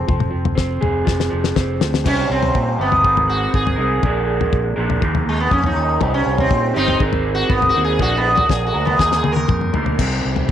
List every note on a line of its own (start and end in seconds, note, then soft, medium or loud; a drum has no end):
0.00 0.54 C4 medium
0.00 1.54 C4 medium
0.00 0.33 F4 medium
0.08 0.32 F1 loud
0.08 0.30 F3 medium
0.08 kick loud
0.08 floor tom medium
0.20 mid tom medium
0.31 0.57 F1 medium
0.31 1.29 F3 medium
0.45 floor tom medium
0.55 0.81 F1 medium
0.55 1.55 C4 medium
0.55 kick loud
0.55 snare medium
0.81 1.06 F1 medium
0.81 2.05 G#4 medium
0.81 floor tom medium
0.81 mid tom medium
1.05 1.31 F1 medium
1.05 2.04 F4 medium
1.05 kick loud
1.05 snare medium
1.20 snare medium
1.30 1.55 F1 medium
1.30 1.80 F3 medium
1.44 snare medium
1.56 1.80 F1 medium
1.56 2.05 C4 medium
1.56 kick loud
1.56 snare medium
1.80 2.04 D2 medium
1.80 2.05 F3 medium
1.80 snare medium
1.94 snare medium
2.04 2.26 C2 medium
2.04 2.77 C3 medium
2.04 2.78 G3 medium
2.04 2.79 C4 medium
2.04 2.30 C#4 loud
2.04 2.79 D#4 medium
2.04 2.77 G4 loud
2.04 kick loud
2.04 floor tom medium
2.04 crash loud
2.30 2.50 C2 medium
2.30 2.79 C4 medium
2.43 floor tom medium
2.55 2.75 A#2 medium
2.55 kick loud
2.78 3.05 G1 medium
2.78 3.04 C3 medium
2.78 3.02 G3 medium
2.78 3.28 B3 medium
2.78 3.02 C4 medium
2.78 3.03 D#4 medium
2.78 3.02 G4 medium
2.92 floor tom medium
3.02 3.46 G#1 medium
3.02 3.76 G#3 medium
3.02 3.76 C4 medium
3.02 3.77 D#4 medium
3.02 3.75 A#4 loud
3.02 kick loud
3.17 floor tom medium
3.29 3.53 F#4 medium
3.54 3.74 G#1 medium
3.54 4.99 G#4 medium
3.54 kick loud
3.67 floor tom medium
3.76 3.99 C2 medium
3.76 4.02 C4 medium
3.76 4.01 D#4 medium
3.76 4.00 A#4 medium
3.80 4.03 G#3 medium
4.02 4.44 A#1 medium
4.02 4.75 A#2 medium
4.02 4.76 D3 medium
4.02 4.76 F3 medium
4.02 4.76 A#3 loud
4.02 4.76 D4 medium
4.02 4.75 A#4 loud
4.02 kick loud
4.02 floor tom medium
4.41 floor tom medium
4.52 4.73 A#1 medium
4.52 kick loud
4.76 4.98 A#1 medium
4.76 5.02 A#2 medium
4.76 5.00 D3 medium
4.76 5.00 F3 medium
4.76 5.00 A#3 medium
4.76 5.00 D4 medium
4.76 5.00 A#4 medium
4.90 floor tom medium
5.00 5.23 D#2 medium
5.00 5.74 D#3 medium
5.00 5.75 F3 medium
5.00 5.75 A#3 medium
5.00 5.74 D#4 loud
5.00 5.73 A#4 medium
5.00 kick loud
5.15 floor tom medium
5.26 5.47 D#2 medium
5.26 5.39 G#3 medium
5.40 5.51 B3 medium
5.51 5.72 F2 medium
5.51 5.64 C#4 medium
5.51 kick loud
5.64 6.13 D#4 medium
5.64 floor tom medium
5.74 5.97 D#2 medium
5.74 5.99 D#3 medium
5.74 6.00 F3 medium
5.74 5.99 A#3 medium
5.74 5.99 D#4 medium
5.74 5.99 A#4 medium
5.99 6.22 C2 medium
5.99 6.73 C3 medium
5.99 6.74 G3 medium
5.99 6.74 C4 loud
5.99 6.74 D#4 loud
5.99 6.73 G4 medium
5.99 kick loud
5.99 floor tom medium
6.14 6.38 C#4 medium
6.26 6.47 C2 medium
6.38 6.75 C4 medium
6.38 floor tom medium
6.51 6.71 A#2 medium
6.51 kick loud
6.74 6.97 G1 medium
6.74 7.00 C3 medium
6.74 6.98 G3 medium
6.74 6.99 C4 medium
6.74 6.99 D#4 medium
6.74 7.00 D#4 loud
6.74 6.98 G4 medium
6.88 floor tom medium
6.98 7.42 G#1 medium
6.98 7.72 G#3 medium
6.98 7.74 C4 medium
6.98 7.74 D#4 loud
6.98 kick loud
7.02 7.73 A#4 loud
7.13 floor tom medium
7.35 7.50 F#4 loud
7.49 7.70 G#1 medium
7.49 7.66 B3 medium
7.49 kick loud
7.62 floor tom medium
7.69 7.84 F#4 medium
7.74 7.97 D#2 medium
7.74 7.99 G#3 medium
7.74 7.99 C4 medium
7.74 7.99 D#4 medium
7.74 7.98 A#4 medium
7.84 8.00 G#4 medium
7.98 8.41 A#1 medium
7.98 8.72 A#2 medium
7.98 8.73 D3 medium
7.98 8.73 F3 loud
7.98 8.74 A#3 medium
7.98 8.74 D4 loud
7.98 8.72 A#4 loud
7.98 kick loud
7.98 floor tom medium
8.02 8.17 F#4 loud
8.17 8.33 B3 medium
8.35 8.50 F#4 medium
8.35 floor tom medium
8.49 8.70 A#1 medium
8.49 8.66 G#4 medium
8.49 kick loud
8.49 snare medium
8.66 8.83 F#4 medium
8.73 8.95 D2 medium
8.73 8.99 A#2 medium
8.73 8.98 D3 medium
8.73 8.98 F3 medium
8.73 8.98 A#3 medium
8.73 8.98 D4 medium
8.73 8.97 A#4 medium
8.85 9.00 B3 medium
8.85 floor tom medium
8.98 9.20 D#2 medium
8.98 9.72 D#3 medium
8.98 9.73 F3 medium
8.98 9.73 A#3 medium
8.98 9.73 D#4 medium
8.98 9.15 G#4 loud
8.98 9.72 A#4 loud
8.98 kick loud
8.98 snare medium
9.12 snare medium
9.16 9.32 G#4 medium
9.24 9.46 D#2 medium
9.24 high tom medium
9.32 10.29 A#4 medium
9.36 high tom medium
9.48 9.70 F2 medium
9.48 kick loud
9.48 mid tom medium
9.61 mid tom medium
9.73 9.95 D2 medium
9.73 9.98 D#3 medium
9.73 9.98 F3 medium
9.73 9.98 A#3 medium
9.73 9.98 D#4 medium
9.73 9.97 A#4 medium
9.73 floor tom medium
9.86 floor tom medium
9.98 10.20 C2 medium
9.98 10.52 C3 medium
9.98 10.52 G3 medium
9.98 10.52 C4 medium
9.98 10.52 D#4 medium
9.98 10.52 G4 medium
9.98 kick loud
9.98 floor tom medium
9.98 crash medium
10.25 10.46 C2 medium
10.36 floor tom medium